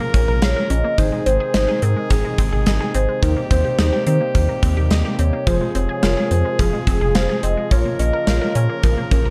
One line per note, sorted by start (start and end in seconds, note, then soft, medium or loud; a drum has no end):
0.00 0.96 C#3 medium
0.00 0.94 F3 medium
0.00 0.96 A#3 medium
0.00 0.11 A#3 medium
0.00 0.94 F4 medium
0.00 0.12 A#4 loud
0.00 0.96 A#4 medium
0.14 0.26 A#1 loud
0.14 0.25 C#4 medium
0.14 0.44 A#4 medium
0.14 kick loud
0.14 closed hi-hat medium
0.28 0.41 A#1 medium
0.28 0.39 A#4 medium
0.42 0.54 A#1 loud
0.42 0.72 C#5 loud
0.42 0.53 F5 medium
0.42 snare loud
0.42 closed hi-hat medium
0.56 0.67 A#4 medium
0.70 0.83 A#1 loud
0.70 0.81 C#4 medium
0.70 1.26 D#5 loud
0.70 closed hi-hat medium
0.84 0.95 A#3 medium
0.98 1.11 G#1 loud
0.98 7.67 C3 medium
0.98 3.20 D#3 medium
0.98 1.09 D#3 medium
0.98 3.20 G#3 medium
0.98 5.43 D#4 medium
0.98 1.28 D#4 medium
0.98 3.20 G#4 medium
0.98 1.28 G#4 medium
0.98 1.28 C5 medium
0.98 kick loud
0.98 closed hi-hat medium
1.12 1.23 G#3 medium
1.26 1.39 G#1 loud
1.26 1.37 C4 medium
1.26 1.84 C5 loud
1.26 closed hi-hat medium
1.40 1.51 G#4 medium
1.54 1.67 G#1 loud
1.54 2.13 D#4 medium
1.54 2.13 G#4 medium
1.54 2.13 C5 medium
1.54 1.65 D#5 medium
1.54 snare loud
1.54 closed hi-hat medium
1.68 1.79 G#4 medium
1.82 1.95 G#2 loud
1.82 1.93 C4 medium
1.82 2.10 A#4 loud
1.82 closed hi-hat medium
1.96 2.07 G#3 medium
2.10 2.23 G#1 loud
2.10 2.21 D#3 medium
2.10 2.63 G#4 medium
2.10 kick medium
2.10 closed hi-hat medium
2.25 2.35 G#3 medium
2.38 2.51 G#1 loud
2.38 2.49 C4 medium
2.38 kick loud
2.38 closed hi-hat medium
2.52 2.65 G#1 medium
2.52 2.63 G#4 medium
2.66 2.79 G#1 loud
2.66 2.77 D#5 medium
2.66 snare loud
2.66 closed hi-hat medium
2.81 2.91 G#4 medium
2.94 3.07 G#1 loud
2.94 3.05 C4 medium
2.94 3.21 C5 loud
2.94 closed hi-hat medium
3.09 3.19 G#3 medium
3.23 3.35 D#2 loud
3.23 3.33 D#3 medium
3.23 5.45 G3 medium
3.23 5.45 A#3 medium
3.23 3.52 D#4 medium
3.23 3.52 G4 medium
3.23 5.45 G4 medium
3.23 3.35 A#4 loud
3.23 3.52 C5 medium
3.23 kick loud
3.23 closed hi-hat medium
3.37 3.47 A#3 medium
3.51 3.63 D#2 loud
3.51 3.61 C4 medium
3.51 4.03 C5 loud
3.51 kick loud
3.51 closed hi-hat medium
3.65 3.75 G4 medium
3.79 3.91 D#2 loud
3.79 4.37 D#4 medium
3.79 4.37 G4 medium
3.79 4.37 C5 medium
3.79 3.89 D#5 medium
3.79 snare loud
3.79 closed hi-hat medium
3.93 4.03 G4 medium
4.07 4.19 D#3 loud
4.07 4.17 C4 medium
4.07 4.87 C5 loud
4.07 closed hi-hat medium
4.21 4.31 A#3 medium
4.35 4.47 D#2 loud
4.35 4.45 D#3 medium
4.35 kick medium
4.35 closed hi-hat medium
4.49 4.60 A#3 medium
4.63 4.75 D#2 loud
4.63 4.74 C4 medium
4.63 kick loud
4.63 closed hi-hat medium
4.77 4.89 D#2 medium
4.77 4.88 G4 medium
4.91 5.03 D#2 loud
4.91 5.02 D#5 medium
4.91 snare loud
4.91 closed hi-hat medium
5.05 5.16 G4 medium
5.19 5.31 D#2 loud
5.19 5.30 C4 medium
5.19 5.49 C#5 loud
5.19 closed hi-hat medium
5.33 5.44 A#3 medium
5.47 5.59 F1 loud
5.47 9.30 F3 medium
5.47 5.58 F3 medium
5.47 7.69 G#3 medium
5.47 9.30 F4 medium
5.47 5.76 F4 medium
5.47 7.69 G#4 medium
5.47 5.76 G#4 medium
5.47 5.76 C5 medium
5.47 5.76 C5 loud
5.47 kick loud
5.47 closed hi-hat medium
5.61 5.72 G#3 medium
5.75 5.87 F1 loud
5.75 5.86 C4 medium
5.75 6.33 C#5 loud
5.75 closed hi-hat medium
5.89 6.00 G#4 medium
6.03 6.15 F1 loud
6.03 6.62 F4 medium
6.03 6.62 G#4 medium
6.03 6.62 A#4 medium
6.03 6.14 F5 medium
6.03 snare loud
6.03 closed hi-hat medium
6.17 6.28 G#4 medium
6.31 6.43 F2 loud
6.31 6.42 C4 medium
6.31 6.61 C5 loud
6.31 closed hi-hat medium
6.45 6.56 G#3 medium
6.59 6.72 F1 loud
6.59 6.70 F3 medium
6.59 6.87 G#4 loud
6.59 kick medium
6.59 closed hi-hat medium
6.73 6.84 G#3 medium
6.87 6.99 F1 loud
6.87 6.98 C4 medium
6.87 7.17 G#4 medium
6.87 kick loud
6.87 closed hi-hat medium
7.01 7.13 F1 medium
7.01 7.12 G#4 medium
7.15 7.28 F1 loud
7.15 7.45 C5 loud
7.15 7.26 F5 medium
7.15 snare loud
7.15 closed hi-hat medium
7.29 7.40 G#4 medium
7.43 7.56 F1 loud
7.43 7.54 C4 medium
7.43 7.71 D#5 loud
7.43 closed hi-hat medium
7.57 7.68 G#3 medium
7.71 7.84 A#1 loud
7.71 9.30 C#3 medium
7.71 7.82 F3 medium
7.71 9.30 A#3 medium
7.71 8.01 F4 medium
7.71 9.30 A#4 medium
7.71 8.01 A#4 medium
7.71 8.01 C#5 loud
7.71 8.01 C#5 medium
7.71 kick loud
7.71 closed hi-hat medium
7.85 7.96 A#3 medium
7.99 8.12 A#1 medium
7.99 8.10 C#4 medium
7.99 8.55 D#5 loud
7.99 closed hi-hat medium
8.13 8.24 A#4 medium
8.27 8.40 A#1 loud
8.27 8.86 F4 medium
8.27 8.86 A#4 medium
8.27 8.86 C#5 medium
8.27 8.38 F5 medium
8.27 snare loud
8.27 closed hi-hat medium
8.41 8.52 A#4 medium
8.55 8.68 A#2 medium
8.55 8.66 C#4 medium
8.55 8.81 C#5 loud
8.55 closed hi-hat medium
8.69 8.80 A#3 medium
8.83 8.96 A#1 loud
8.83 8.94 F3 medium
8.83 8.96 A#4 loud
8.83 kick medium
8.83 closed hi-hat medium
8.98 9.08 A#3 medium
9.11 9.24 A#1 loud
9.11 9.22 C#4 medium
9.11 9.30 A#4 loud
9.11 kick loud
9.11 closed hi-hat medium
9.25 9.30 A#1 medium
9.25 9.30 A#4 medium